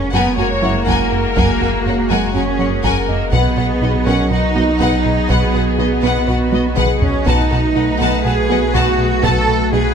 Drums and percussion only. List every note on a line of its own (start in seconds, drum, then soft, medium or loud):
0.87 taiko medium
1.37 taiko loud
2.84 taiko medium
3.33 taiko medium
4.80 taiko medium
5.30 taiko medium
6.53 taiko high medium
6.77 taiko mid medium
7.02 taiko low medium
7.27 taiko medium
8.74 taiko medium
9.23 taiko loud